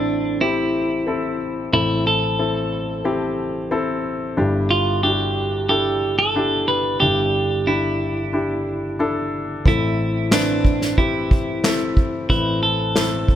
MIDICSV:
0, 0, Header, 1, 4, 480
1, 0, Start_track
1, 0, Key_signature, 0, "minor"
1, 0, Tempo, 660066
1, 1258, Time_signature, 4, 2, 24, 8
1, 9712, End_track
2, 0, Start_track
2, 0, Title_t, "Clean electric guitar"
2, 0, Program_c, 0, 27
2, 0, Note_on_c, 0, 62, 63
2, 296, Note_off_c, 0, 62, 0
2, 299, Note_on_c, 0, 64, 66
2, 1229, Note_off_c, 0, 64, 0
2, 1262, Note_on_c, 0, 64, 90
2, 1502, Note_off_c, 0, 64, 0
2, 1505, Note_on_c, 0, 69, 77
2, 2913, Note_off_c, 0, 69, 0
2, 3422, Note_on_c, 0, 65, 62
2, 3657, Note_off_c, 0, 65, 0
2, 3660, Note_on_c, 0, 67, 59
2, 4131, Note_off_c, 0, 67, 0
2, 4140, Note_on_c, 0, 67, 63
2, 4495, Note_off_c, 0, 67, 0
2, 4498, Note_on_c, 0, 69, 76
2, 4855, Note_off_c, 0, 69, 0
2, 4857, Note_on_c, 0, 71, 78
2, 5088, Note_off_c, 0, 71, 0
2, 5091, Note_on_c, 0, 67, 83
2, 5579, Note_on_c, 0, 64, 58
2, 5590, Note_off_c, 0, 67, 0
2, 6511, Note_off_c, 0, 64, 0
2, 7038, Note_on_c, 0, 64, 77
2, 7504, Note_off_c, 0, 64, 0
2, 7507, Note_on_c, 0, 62, 64
2, 7981, Note_off_c, 0, 62, 0
2, 7984, Note_on_c, 0, 64, 62
2, 8912, Note_off_c, 0, 64, 0
2, 8944, Note_on_c, 0, 64, 91
2, 9180, Note_off_c, 0, 64, 0
2, 9183, Note_on_c, 0, 69, 81
2, 9712, Note_off_c, 0, 69, 0
2, 9712, End_track
3, 0, Start_track
3, 0, Title_t, "Grand piano"
3, 0, Program_c, 1, 0
3, 0, Control_c, 1, 64, 127
3, 0, Note_on_c, 1, 33, 45
3, 0, Note_on_c, 1, 45, 49
3, 0, Note_on_c, 1, 60, 53
3, 0, Note_on_c, 1, 64, 46
3, 0, Note_on_c, 1, 69, 61
3, 200, Note_off_c, 1, 60, 0
3, 202, Note_off_c, 1, 64, 0
3, 203, Note_off_c, 1, 69, 0
3, 299, Note_on_c, 1, 60, 56
3, 301, Note_on_c, 1, 64, 54
3, 304, Note_on_c, 1, 67, 64
3, 680, Note_off_c, 1, 60, 0
3, 681, Note_off_c, 1, 64, 0
3, 683, Note_off_c, 1, 67, 0
3, 776, Note_on_c, 1, 60, 59
3, 780, Note_on_c, 1, 64, 49
3, 783, Note_on_c, 1, 69, 65
3, 1158, Note_off_c, 1, 60, 0
3, 1161, Note_off_c, 1, 64, 0
3, 1162, Note_off_c, 1, 69, 0
3, 1227, Note_off_c, 1, 33, 0
3, 1228, Note_off_c, 1, 45, 0
3, 1256, Note_on_c, 1, 33, 42
3, 1257, Note_on_c, 1, 60, 52
3, 1257, Note_on_c, 1, 64, 47
3, 1258, Note_on_c, 1, 45, 51
3, 1261, Note_on_c, 1, 69, 57
3, 1639, Note_off_c, 1, 60, 0
3, 1639, Note_off_c, 1, 64, 0
3, 1641, Note_off_c, 1, 69, 0
3, 1738, Note_on_c, 1, 60, 51
3, 1740, Note_on_c, 1, 64, 52
3, 1742, Note_on_c, 1, 69, 59
3, 2120, Note_off_c, 1, 60, 0
3, 2120, Note_off_c, 1, 64, 0
3, 2122, Note_off_c, 1, 69, 0
3, 2215, Note_on_c, 1, 60, 63
3, 2219, Note_on_c, 1, 64, 61
3, 2220, Note_on_c, 1, 67, 76
3, 2598, Note_off_c, 1, 60, 0
3, 2600, Note_off_c, 1, 64, 0
3, 2601, Note_off_c, 1, 67, 0
3, 2698, Note_on_c, 1, 60, 69
3, 2700, Note_on_c, 1, 64, 66
3, 2705, Note_on_c, 1, 69, 79
3, 3080, Note_off_c, 1, 60, 0
3, 3081, Note_off_c, 1, 64, 0
3, 3083, Note_off_c, 1, 69, 0
3, 3148, Note_off_c, 1, 33, 0
3, 3149, Note_off_c, 1, 45, 0
3, 3178, Note_on_c, 1, 62, 66
3, 3178, Note_on_c, 1, 64, 58
3, 3181, Note_on_c, 1, 31, 54
3, 3181, Note_on_c, 1, 43, 58
3, 3185, Note_on_c, 1, 67, 76
3, 3188, Control_c, 1, 64, 0
3, 3335, Control_c, 1, 64, 127
3, 3560, Note_off_c, 1, 62, 0
3, 3560, Note_off_c, 1, 64, 0
3, 3563, Note_off_c, 1, 67, 0
3, 3660, Note_on_c, 1, 62, 54
3, 3661, Note_on_c, 1, 64, 49
3, 3662, Note_on_c, 1, 66, 50
3, 3708, Note_off_c, 1, 66, 0
3, 3710, Note_on_c, 1, 67, 64
3, 4041, Note_off_c, 1, 62, 0
3, 4042, Note_off_c, 1, 64, 0
3, 4066, Note_off_c, 1, 67, 0
3, 4138, Note_on_c, 1, 62, 53
3, 4143, Note_on_c, 1, 64, 58
3, 4144, Note_on_c, 1, 69, 70
3, 4521, Note_off_c, 1, 62, 0
3, 4523, Note_off_c, 1, 64, 0
3, 4523, Note_off_c, 1, 69, 0
3, 4621, Note_on_c, 1, 62, 63
3, 4627, Note_on_c, 1, 64, 54
3, 4627, Note_on_c, 1, 67, 69
3, 5002, Note_off_c, 1, 62, 0
3, 5005, Note_off_c, 1, 64, 0
3, 5005, Note_off_c, 1, 67, 0
3, 5072, Note_off_c, 1, 31, 0
3, 5072, Note_off_c, 1, 43, 0
3, 5100, Note_on_c, 1, 31, 46
3, 5101, Note_on_c, 1, 62, 60
3, 5101, Note_on_c, 1, 64, 54
3, 5102, Note_on_c, 1, 43, 46
3, 5103, Note_on_c, 1, 67, 60
3, 5482, Note_off_c, 1, 62, 0
3, 5482, Note_off_c, 1, 64, 0
3, 5483, Note_off_c, 1, 67, 0
3, 5581, Note_on_c, 1, 62, 56
3, 5584, Note_on_c, 1, 64, 50
3, 5587, Note_on_c, 1, 67, 64
3, 5962, Note_off_c, 1, 62, 0
3, 5964, Note_off_c, 1, 64, 0
3, 5965, Note_off_c, 1, 67, 0
3, 6058, Note_on_c, 1, 62, 57
3, 6062, Note_on_c, 1, 64, 52
3, 6064, Note_on_c, 1, 67, 62
3, 6441, Note_off_c, 1, 62, 0
3, 6443, Note_off_c, 1, 64, 0
3, 6444, Note_off_c, 1, 67, 0
3, 6539, Note_on_c, 1, 62, 67
3, 6543, Note_on_c, 1, 64, 64
3, 6545, Note_on_c, 1, 69, 81
3, 6922, Note_off_c, 1, 62, 0
3, 6923, Note_off_c, 1, 64, 0
3, 6924, Note_off_c, 1, 69, 0
3, 6992, Note_off_c, 1, 31, 0
3, 6992, Note_off_c, 1, 43, 0
3, 7022, Note_on_c, 1, 33, 46
3, 7022, Note_on_c, 1, 60, 54
3, 7024, Note_on_c, 1, 64, 50
3, 7025, Note_on_c, 1, 45, 46
3, 7027, Note_on_c, 1, 69, 57
3, 7030, Control_c, 1, 64, 0
3, 7146, Control_c, 1, 64, 127
3, 7403, Note_off_c, 1, 60, 0
3, 7404, Note_off_c, 1, 64, 0
3, 7405, Note_off_c, 1, 69, 0
3, 7503, Note_on_c, 1, 60, 59
3, 7503, Note_on_c, 1, 64, 52
3, 7509, Note_on_c, 1, 71, 65
3, 7883, Note_off_c, 1, 60, 0
3, 7883, Note_off_c, 1, 64, 0
3, 7886, Note_off_c, 1, 71, 0
3, 7984, Note_on_c, 1, 60, 59
3, 7985, Note_on_c, 1, 64, 54
3, 7989, Note_on_c, 1, 67, 63
3, 8363, Note_off_c, 1, 60, 0
3, 8364, Note_off_c, 1, 64, 0
3, 8366, Note_off_c, 1, 67, 0
3, 8461, Note_on_c, 1, 60, 57
3, 8464, Note_on_c, 1, 64, 51
3, 8466, Note_on_c, 1, 69, 62
3, 8842, Note_off_c, 1, 60, 0
3, 8843, Note_off_c, 1, 64, 0
3, 8844, Note_off_c, 1, 69, 0
3, 8911, Note_off_c, 1, 33, 0
3, 8913, Note_off_c, 1, 45, 0
3, 8940, Note_on_c, 1, 60, 56
3, 8941, Note_on_c, 1, 45, 50
3, 8943, Note_on_c, 1, 33, 44
3, 8943, Note_on_c, 1, 64, 45
3, 8946, Note_on_c, 1, 71, 61
3, 9321, Note_off_c, 1, 60, 0
3, 9322, Note_off_c, 1, 64, 0
3, 9324, Note_off_c, 1, 71, 0
3, 9421, Note_on_c, 1, 60, 52
3, 9421, Note_on_c, 1, 64, 55
3, 9421, Note_on_c, 1, 69, 64
3, 9712, Note_off_c, 1, 33, 0
3, 9712, Note_off_c, 1, 45, 0
3, 9712, Note_off_c, 1, 60, 0
3, 9712, Note_off_c, 1, 64, 0
3, 9712, Note_off_c, 1, 69, 0
3, 9712, End_track
4, 0, Start_track
4, 0, Title_t, "Drums"
4, 7021, Note_on_c, 9, 36, 78
4, 7094, Note_off_c, 9, 36, 0
4, 7501, Note_on_c, 9, 38, 79
4, 7508, Note_on_c, 9, 39, 69
4, 7573, Note_off_c, 9, 38, 0
4, 7581, Note_off_c, 9, 39, 0
4, 7742, Note_on_c, 9, 36, 71
4, 7815, Note_off_c, 9, 36, 0
4, 7865, Note_on_c, 9, 38, 28
4, 7937, Note_off_c, 9, 38, 0
4, 7983, Note_on_c, 9, 36, 66
4, 8056, Note_off_c, 9, 36, 0
4, 8226, Note_on_c, 9, 36, 83
4, 8298, Note_off_c, 9, 36, 0
4, 8463, Note_on_c, 9, 38, 84
4, 8471, Note_on_c, 9, 39, 70
4, 8536, Note_off_c, 9, 38, 0
4, 8544, Note_off_c, 9, 39, 0
4, 8703, Note_on_c, 9, 36, 76
4, 8776, Note_off_c, 9, 36, 0
4, 8942, Note_on_c, 9, 36, 81
4, 9015, Note_off_c, 9, 36, 0
4, 9422, Note_on_c, 9, 38, 87
4, 9429, Note_on_c, 9, 39, 63
4, 9494, Note_off_c, 9, 38, 0
4, 9502, Note_off_c, 9, 39, 0
4, 9660, Note_on_c, 9, 36, 66
4, 9712, Note_off_c, 9, 36, 0
4, 9712, End_track
0, 0, End_of_file